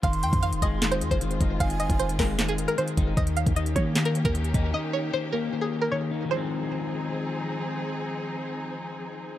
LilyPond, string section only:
\new Staff \with { instrumentName = "String section" } { \time 4/4 \key f \minor \tempo 4 = 153 << { <aes c' f'>1~ | <aes c' f'>1 | <bes des' g'>1~ | <bes des' g'>1 |
<f c' ees' aes'>1~ | <f c' ees' aes'>1 | } \\ { ees1~ | ees1~ | ees1~ | ees1 |
r1 | r1 | } >> }